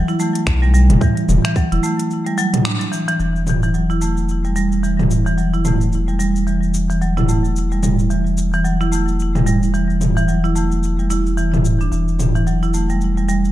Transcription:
0.08 marimba E4, cabasa
0.20 marimba A3, cabasa
0.35 closed hi-hat, cabasa
0.47 analog synth bass B1, finger snap, kick, cabasa
0.62 marimba G3, cabasa
0.74 marimba G3, cabasa
0.90 analog synth bass E1, closed hi-hat, mid tom, cabasa
1.01 marimba E3, kick, cabasa
1.17 closed hi-hat, cabasa
1.29 analog synth bass E1, mid tom, cabasa
1.45 marimba E3, finger snap, closed hi-hat, cabasa
1.56 marimba F#3, kick, cabasa
1.72 analog synth bass E1, marimba E4, closed hi-hat, cabasa
1.83 marimba A3, cabasa
1.99 closed hi-hat, cabasa
2.11 cabasa
2.26 marimba G3, closed hi-hat, cabasa
2.38 marimba F#3, cabasa
2.54 closed hi-hat, mid tom, cabasa
2.65 marimba D4, finger snap, cabasa
2.81 closed hi-hat, cabasa
2.92 marimba E3, cabasa
3.08 marimba E3, closed hi-hat, cabasa
3.20 analog synth bass E1, marimba E3, cabasa
3.36 cabasa
3.47 mid tom, cabasa
3.63 marimba E3, cabasa
3.74 marimba F#3, cabasa
3.90 marimba E4, cabasa
4.01 marimba A3, cabasa
4.17 cabasa
4.29 cabasa
4.45 marimba G3, cabasa
4.56 marimba G3, cabasa
4.72 cabasa
4.83 marimba E3, cabasa
4.99 mid tom, cabasa
5.11 cabasa
5.26 marimba E3, cabasa
5.38 marimba F#3, cabasa
5.54 marimba E4, cabasa
5.65 marimba A3, mid tom, cabasa
5.81 cabasa
5.92 cabasa
6.08 marimba G3, cabasa
6.19 marimba G3, cabasa
6.36 cabasa
6.47 marimba E3, cabasa
6.63 cabasa
6.74 cabasa
6.90 marimba E3, cabasa
7.01 marimba F#3, cabasa
7.17 marimba E4, mid tom, cabasa
7.29 marimba A3, cabasa
7.45 cabasa
7.56 cabasa
7.72 marimba G3, cabasa
7.83 marimba G3, mid tom, cabasa
7.99 cabasa
8.10 marimba E3, cabasa
8.26 cabasa
8.37 cabasa
8.53 marimba E3, cabasa
8.65 marimba F#3, cabasa
8.81 marimba E4, cabasa
8.92 marimba A3, cabasa
9.08 cabasa
9.20 cabasa
9.35 marimba G3, mid tom, cabasa
9.46 marimba G3, cabasa
9.63 cabasa
9.74 marimba E3, cabasa
9.90 cabasa
10.01 mid tom, cabasa
10.17 marimba E3, cabasa
10.28 marimba F#3, cabasa
10.44 marimba E4, cabasa
10.55 marimba A3, cabasa
10.72 cabasa
10.83 cabasa
10.99 marimba G3, cabasa
11.10 marimba E4, cabasa
11.26 cabasa
11.37 marimba E3, cabasa
11.54 mid tom, cabasa
11.65 cabasa
11.81 marimba D4, cabasa
11.92 analog synth bass E1, marimba E3, cabasa
12.08 cabasa
12.19 mid tom, cabasa
12.35 marimba E3, cabasa
12.47 marimba F#3, cabasa
12.63 marimba E4, cabasa
12.74 marimba A3, cabasa
12.90 marimba G3, cabasa
13.01 cabasa
13.17 marimba G3, cabasa
13.29 marimba G3, cabasa
13.45 cabasa

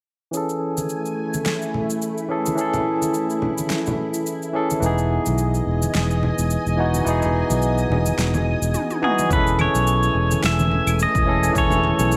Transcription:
0.31 tine electric piano E3 C#4 G#4, string machine A3 E4 G#5, cabasa
0.37 tine electric piano A4
0.49 cabasa
0.77 high conga, cabasa
0.89 cabasa
1.06 cabasa
1.34 high conga, cabasa
1.46 snare, cabasa
1.62 cabasa
1.74 low conga
1.90 cabasa
2.02 cabasa
2.18 cabasa
2.29 tine electric piano E3 C#4 G#4 A4
2.46 high conga, cabasa
2.55 tine electric piano E3 C#4 G#4, cabasa
2.61 tine electric piano A4
2.74 low conga, cabasa
3.02 high conga, cabasa
3.14 cabasa
3.30 cabasa
3.42 low conga
3.58 high conga, cabasa
3.70 snare, cabasa
3.86 low conga, cabasa
4.14 cabasa
4.26 cabasa
4.42 cabasa
4.53 tine electric piano E3 C#4 G#4 A4
4.70 high conga, cabasa
4.80 fretless electric bass E1, tine electric piano E3 B3 D#4, string machine D#5 G#5, cabasa
4.86 tine electric piano G#4
4.98 cabasa
5.26 fretless electric bass B1, high conga, cabasa
5.38 cabasa
5.54 cabasa
5.67 fretless electric bass E1
5.82 high conga, cabasa
5.95 fretless electric bass E1, snare, cabasa
6.11 cabasa
6.23 low conga
6.38 fretless electric bass E1, cabasa
6.50 cabasa
6.66 fretless electric bass E1, cabasa
6.77 tine electric piano E3 B3 D#4 F#4
6.94 high conga, cabasa
7.04 fretless electric bass E1, tine electric piano E3 B3, string machine D#6, cabasa
7.08 tine electric piano D#4 G#4
7.22 low conga, cabasa
7.50 fretless electric bass B1, high conga, cabasa
7.62 cabasa
7.78 cabasa
7.90 fretless electric bass E1, low conga
8.06 high conga, cabasa
8.18 fretless electric bass E1, snare, cabasa
8.34 high conga, low conga, cabasa
8.62 fretless electric bass E1, cabasa
8.74 high tom, cabasa
8.90 high tom, cabasa
9.01 tine electric piano E3 B3 D#4 F#4, pedal steel guitar G#4, mid tom
9.19 mid tom, high conga, cabasa
9.29 fretless electric bass E1, tine electric piano E3 C#4 G#4, string machine E3 A3 G#5, pedal steel guitar B4, kick, cabasa
9.35 tine electric piano A4
9.47 cabasa
9.59 pedal steel guitar C#5, muted conga, high conga, claves
9.74 fretless electric bass B1, cabasa
9.87 cabasa
10.03 cabasa
10.15 fretless electric bass E1
10.31 high conga, cabasa
10.43 fretless electric bass E1, pedal steel guitar E5, snare, cabasa
10.59 high conga, cabasa
10.71 low conga
10.87 fretless electric bass E1, cabasa, claves
10.99 pedal steel guitar D#5, cabasa
11.15 fretless electric bass E1, kick, cabasa
11.26 tine electric piano E3 C#4 G#4 A4
11.43 cabasa
11.53 fretless electric bass E1, tine electric piano E3 C#4 G#5, kick, cabasa
11.58 tine electric piano A4, pedal steel guitar C#5
11.70 low conga, cabasa
11.83 muted conga, high conga
11.99 fretless electric bass B1, muted conga, cabasa
12.12 cabasa

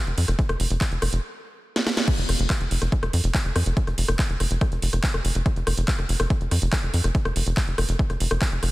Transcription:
0.07 analog synth bass F1, closed hi-hat
0.18 analog synth bass F2, open hi-hat
0.28 analog synth bass F1, cross-stick, closed hi-hat
0.39 kick, closed hi-hat
0.49 analog synth bass F1, cross-stick, closed hi-hat
0.60 analog synth bass F1, open hi-hat
0.70 analog synth bass F1, closed hi-hat
0.81 kick, cross-stick, clap, closed hi-hat
0.92 analog synth bass F1, closed hi-hat
1.02 analog synth bass F1, cross-stick, open hi-hat
1.13 analog synth bass F1, closed hi-hat
1.76 snare
1.87 snare
1.97 snare
2.08 kick, closed hi-hat, crash
2.18 analog synth bass F1, closed hi-hat
2.29 analog synth bass F1, cross-stick, open hi-hat
2.39 analog synth bass F1, closed hi-hat
2.50 kick, cross-stick, clap, closed hi-hat
2.61 analog synth bass F1, closed hi-hat
2.71 analog synth bass F1, open hi-hat
2.82 analog synth bass F1, cross-stick, closed hi-hat
2.92 kick, closed hi-hat
3.03 analog synth bass F1, cross-stick, closed hi-hat
3.13 analog synth bass F2, open hi-hat
3.24 analog synth bass F1, closed hi-hat
3.34 kick, cross-stick, clap, closed hi-hat
3.45 analog synth bass F1, closed hi-hat
3.56 analog synth bass F2, cross-stick, open hi-hat
3.66 analog synth bass F1, closed hi-hat
3.77 kick, closed hi-hat
3.87 analog synth bass F1, cross-stick, closed hi-hat
3.98 analog synth bass F1, open hi-hat
4.08 analog synth bass F1, cross-stick, closed hi-hat
4.19 kick, clap, closed hi-hat
4.30 analog synth bass F1, closed hi-hat
4.40 analog synth bass F1, cross-stick, open hi-hat
4.51 analog synth bass F1, closed hi-hat
4.61 kick, cross-stick, closed hi-hat
4.72 analog synth bass F1, closed hi-hat
4.82 analog synth bass F1, open hi-hat
4.93 analog synth bass F1, cross-stick, closed hi-hat
5.04 kick, clap, closed hi-hat
5.14 analog synth bass F1, cross-stick, closed hi-hat
5.25 analog synth bass F1, open hi-hat
5.35 analog synth bass F1, closed hi-hat
5.46 kick, cross-stick, closed hi-hat
5.56 analog synth bass F1, closed hi-hat
5.67 analog synth bass F1, cross-stick, open hi-hat
5.77 analog synth bass F1, closed hi-hat
5.88 kick, clap, closed hi-hat
5.99 analog synth bass F1, cross-stick, closed hi-hat
6.09 analog synth bass F1, open hi-hat
6.20 analog synth bass F1, cross-stick, closed hi-hat
6.30 kick, closed hi-hat
6.41 analog synth bass F1, closed hi-hat
6.51 analog synth bass F2, cross-stick, open hi-hat
6.62 analog synth bass F1, closed hi-hat
6.73 kick, cross-stick, clap, closed hi-hat
6.83 analog synth bass F1, closed hi-hat
6.94 analog synth bass F2, open hi-hat
7.04 analog synth bass F1, cross-stick, closed hi-hat
7.15 kick, closed hi-hat
7.25 analog synth bass F1, cross-stick, closed hi-hat
7.36 analog synth bass F1, open hi-hat
7.46 analog synth bass F1, closed hi-hat
7.57 kick, cross-stick, clap, closed hi-hat
7.68 analog synth bass F1, closed hi-hat
7.78 analog synth bass F1, cross-stick, open hi-hat
7.89 analog synth bass F1, closed hi-hat
7.99 kick, closed hi-hat
8.10 analog synth bass F1, cross-stick, closed hi-hat
8.20 analog synth bass F1, open hi-hat
8.31 analog synth bass F1, cross-stick, closed hi-hat
8.42 kick, clap, closed hi-hat
8.52 analog synth bass F1, closed hi-hat
8.63 analog synth bass F1, cross-stick, open hi-hat

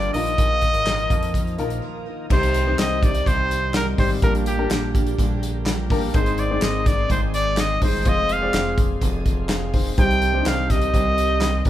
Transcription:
Already playing: analog synth bass G1, steel-string acoustic guitar G2 D3 F3 A#3 D4 G4, grand piano G2 D4 F4 G4 A#4 G5, tonewheel organ F3 G3 A#3, trumpet D5
0.02 closed hi-hat
0.14 analog synth bass A#1, grand piano A#2 A#3 D#4 F4 A#4, tonewheel organ D#3, steel-string acoustic guitar F3 A#3 D#4 A#4, trumpet D#5, open hi-hat
0.26 closed hi-hat
0.38 analog synth bass A#1, steel-string acoustic guitar A#2 D#3 F3 A#3 D#4 A#4, kick, closed hi-hat
0.61 steel-string acoustic guitar F3 A#3 D#4, kick, closed hi-hat
0.74 analog synth bass G#1, closed hi-hat
0.85 steel-string acoustic guitar A#2 D#3 F3 A#3 D#4 A#4, snare, clap
0.98 closed hi-hat
1.10 analog synth bass F2, kick, closed hi-hat
1.23 closed hi-hat
1.33 steel-string acoustic guitar F3 A#3 D#4 A#4, kick, closed hi-hat
1.47 closed hi-hat
1.58 analog synth bass A#1, steel-string acoustic guitar F3 A#3 D#4 A#4, grand piano A#3 D#4 F4 A#4, closed hi-hat
1.70 closed hi-hat
1.82 steel-string acoustic guitar A#2 D#3 F3 A#3 D#4 A#4
2.05 steel-string acoustic guitar F3 A#3 D#4 A#4
2.29 analog synth bass C2, steel-string acoustic guitar C3 G3 C4 D#4 G4, grand piano C3 G3 C4 D#4 G4 C5, tonewheel organ D#3 G3 C4, trumpet C5, kick, crash
2.43 closed hi-hat
2.54 closed hi-hat
2.67 grand piano G3 C4 D#4 G4 C5
2.77 analog synth bass C2, steel-string acoustic guitar G3 C4 D#4 G4, trumpet D#5, snare, clap, closed hi-hat
3.01 steel-string acoustic guitar C4 D#4 G4, trumpet D5, kick, closed hi-hat
3.15 closed hi-hat
3.25 analog synth bass C2, steel-string acoustic guitar C3 G3 C4 D#4 G4, trumpet C5, kick, closed hi-hat
3.51 closed hi-hat
3.74 steel-string acoustic guitar G3 C4 D#4 G4, trumpet A#4, snare, clap, closed hi-hat
3.98 analog synth bass G#1, grand piano G3 C4 D#4 G4 D5, trumpet C5, kick, open hi-hat
4.22 analog synth bass A#1, steel-string acoustic guitar A#2 D3 G3 A#3 D4 G4, grand piano A#2 G3 A#3 D4 G4 A#4, tonewheel organ D3 A#3, trumpet A#4, kick, closed hi-hat
4.35 closed hi-hat
4.46 trumpet G4, closed hi-hat
4.58 grand piano G3 A#3 D4 G4 A#4
4.70 analog synth bass A#1, steel-string acoustic guitar G3 A#3 D4 G4, snare, clap, closed hi-hat
4.94 steel-string acoustic guitar G3 A#3 D4 G4, kick, closed hi-hat
5.07 closed hi-hat
5.18 analog synth bass A#1, steel-string acoustic guitar A#2 D3 G3 A#3 D4 G4, kick, closed hi-hat
5.43 closed hi-hat
5.66 steel-string acoustic guitar G3 A#3 D4 G4, snare, clap, closed hi-hat
5.90 grand piano G3 A#3 D4 G4 A#4, kick, open hi-hat
6.14 analog synth bass G#1, steel-string acoustic guitar G#2 D#3 G#3 C4 D#4 G#4, grand piano G#2 G#3 C4 D#4 G#4 C5, tonewheel organ D#3 G#3 C4, trumpet C5, kick, closed hi-hat
6.26 closed hi-hat
6.38 trumpet D5, closed hi-hat
6.51 grand piano G#3 C4 D#4 G#4 D5
6.62 analog synth bass G#1, steel-string acoustic guitar G#3 C4 D#4 G#4, trumpet D#5, snare, clap, closed hi-hat
6.86 steel-string acoustic guitar G#3 C4 D#4 G#4, trumpet D5, kick, snare, closed hi-hat
7.09 analog synth bass G#1, steel-string acoustic guitar G#2 D#3 G#3 C4 D#4 G#4, trumpet C5, kick, closed hi-hat
7.34 trumpet D5, closed hi-hat
7.57 steel-string acoustic guitar G#3 C4 D#4, trumpet D#5, snare, clap, closed hi-hat
7.81 analog synth bass G1, grand piano G#3 C4 D#4 G#4 C5, steel-string acoustic guitar G#3 C4 D#4 G#4, trumpet C5, kick, open hi-hat
8.05 analog synth bass F1, steel-string acoustic guitar F3 C4 F4 G#4, tonewheel organ F3, grand piano G#3 C4 F4 G#4 C5, trumpet D#5, kick, closed hi-hat
8.29 trumpet F5, closed hi-hat
8.41 grand piano G#3 C4 F4 G#4 D5
8.53 analog synth bass F1, steel-string acoustic guitar F3 C4 F4, snare, clap, closed hi-hat
8.77 steel-string acoustic guitar C4 F4 G#4, kick, closed hi-hat
9.01 analog synth bass F1, steel-string acoustic guitar F3 C4 F4 G#4, kick, closed hi-hat
9.26 kick, closed hi-hat
9.49 steel-string acoustic guitar F3 C4 F4 G#4, grand piano G#4 F5, snare, clap, closed hi-hat
9.74 grand piano D#4 C5, kick, open hi-hat
9.97 analog synth bass C2, steel-string acoustic guitar C3 G3 C4 D#4 G4, grand piano C3 G3 C4 D#4 G4 C5, tonewheel organ D#3 G3, trumpet G5, kick, closed hi-hat
10.11 closed hi-hat
10.22 closed hi-hat
10.34 grand piano G3 C4 D4 G4 C5
10.40 grand piano D#4
10.45 analog synth bass C2, steel-string acoustic guitar G3 C4 D#4 G4, trumpet F5, snare, clap, closed hi-hat
10.69 steel-string acoustic guitar C4 D#4 G4, trumpet D#5, kick, snare, closed hi-hat
10.82 closed hi-hat
10.94 analog synth bass C2, steel-string acoustic guitar C3 G3 C4 D#4 G4, kick, closed hi-hat
11.18 closed hi-hat
11.41 steel-string acoustic guitar G3 C4 G4, snare, clap, closed hi-hat
11.65 analog synth bass G#1, grand piano G3 C4 D#4 G4 D5, steel-string acoustic guitar D#4 G4, kick, open hi-hat

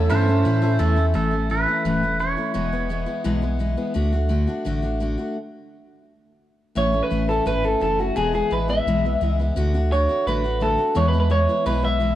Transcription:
Already playing: honky-tonk piano C#4 E4 A4, clean electric guitar C#4 A4, string section C#4 E5 A5 E6, steel-string acoustic guitar E4
0.09 sub bass G2, steel-string acoustic guitar E3 A3 C#4 E4, pedal steel guitar B3 C5 E5 A5
0.27 steel-string acoustic guitar A3 C#4 E4
0.35 pedal steel guitar C#4
0.45 sub bass A2, steel-string acoustic guitar E3 A3 C#4 E4
0.62 steel-string acoustic guitar A3 C#4 E4, honky-tonk piano C#4 E4 A4
0.79 sub bass E2, steel-string acoustic guitar E3 A3 C#4 E4, pedal steel guitar A4
0.96 steel-string acoustic guitar A3 C#4 E4
1.14 sub bass A1, steel-string acoustic guitar A2 E3 A3 C#4 E4, pedal steel guitar A4
1.31 steel-string acoustic guitar A3 C#4 E4
1.50 steel-string acoustic guitar E3 A3 C#4 E4, pedal steel guitar B4
1.67 steel-string acoustic guitar A3 C#4 E4
1.85 sub bass E1, steel-string acoustic guitar A2 E3 A3 C#4 E4
2.03 steel-string acoustic guitar A3 C#4 E4
2.19 steel-string acoustic guitar E3 A3 C#4 E4, pedal steel guitar C#5
2.37 steel-string acoustic guitar A3 C#4 E4
2.54 sub bass E1, steel-string acoustic guitar E2 B2 E3 G#3 B3 E4
2.73 steel-string acoustic guitar E3 G#3 B3 E4
2.89 steel-string acoustic guitar E3 G#3 B3 E4
3.06 steel-string acoustic guitar E3 G#3 B3 E4
3.24 sub bass B1, steel-string acoustic guitar E2 B2 E3 G#3 B3 E4
3.42 steel-string acoustic guitar E3 G#3 B3 E4
3.59 steel-string acoustic guitar E3 G#3 B3 E4
3.77 steel-string acoustic guitar E3 G#3 B3 E4
3.94 sub bass D2, steel-string acoustic guitar D3 A3 D4 F#4
4.12 steel-string acoustic guitar A3 D4 F#4
4.29 steel-string acoustic guitar D3 A3 D4 F#4
4.47 steel-string acoustic guitar A3 D4 F#4
4.65 sub bass A1, steel-string acoustic guitar D3 A3 D4 F#4
4.82 steel-string acoustic guitar A3 D4 F#4
5.00 steel-string acoustic guitar D3 A3 D4 F#4
5.18 steel-string acoustic guitar A3 D4 F#4
6.75 sub bass A1, steel-string acoustic guitar A2 E3 A3 C#4 E4, clean electric guitar C#5
6.92 steel-string acoustic guitar A3 C#4 E4
7.03 clean electric guitar B4
7.11 sub bass A1, steel-string acoustic guitar E3 A3 C#4 E4
7.29 steel-string acoustic guitar A3 C#4 E4, clean electric guitar A4
7.46 sub bass G#1, steel-string acoustic guitar A2 E3 A3 C#4 E4, clean electric guitar B4
7.63 steel-string acoustic guitar A3 C#4 E4, clean electric guitar A4
7.80 sub bass F#1, steel-string acoustic guitar E3 A3 C#4 E4, clean electric guitar A4
7.99 steel-string acoustic guitar A3 C#4 E4, clean electric guitar F#4
8.16 sub bass E1, steel-string acoustic guitar E2 B2 E3 G#3 B3 E4, clean electric guitar G#4
8.33 steel-string acoustic guitar E3 G#3 B3 E4, clean electric guitar G#4
8.51 sub bass A1, steel-string acoustic guitar E3 G#3 B3 E4, clean electric guitar B4
8.68 steel-string acoustic guitar E3 G#3 B3 E4, clean electric guitar E5
8.87 sub bass B1, steel-string acoustic guitar E2 B2 E3 G#3 B3 E4
9.05 steel-string acoustic guitar E3 G#3 B3 E4
9.21 sub bass C#2, steel-string acoustic guitar E3 G#3 B3 E4
9.39 steel-string acoustic guitar E3 G#3 B3 E4
9.56 sub bass D2, steel-string acoustic guitar D3 A3 D4 F#4
9.74 steel-string acoustic guitar A3 D4 F#4
9.92 steel-string acoustic guitar D3 A3 D4 F#4, clean electric guitar C#5
10.09 steel-string acoustic guitar A3 D4 F#4
10.27 sub bass A1, steel-string acoustic guitar D3 A3 D4 F#4, clean electric guitar B4
10.44 steel-string acoustic guitar A3 D4 F#4
10.60 steel-string acoustic guitar D3 A3 D4 F#4, clean electric guitar A4
10.78 steel-string acoustic guitar A3 D4 F#4
10.95 steel-string acoustic guitar E2 B2 E3 G#3 B3 E4, sub bass E2, clean electric guitar C#5
11.08 clean electric guitar B4
11.13 steel-string acoustic guitar E3 G#3 B3 E4
11.20 clean electric guitar B4
11.30 steel-string acoustic guitar E3 G#3 B3 E4, clean electric guitar C#5
11.49 steel-string acoustic guitar E3 G#3 B3 E4
11.66 sub bass B1, steel-string acoustic guitar E2 B2 E3 G#3 B3 E4, clean electric guitar B4
11.82 steel-string acoustic guitar E3 G#3 B3 E4, clean electric guitar E5
12.00 steel-string acoustic guitar E3 G#3 B3 E4

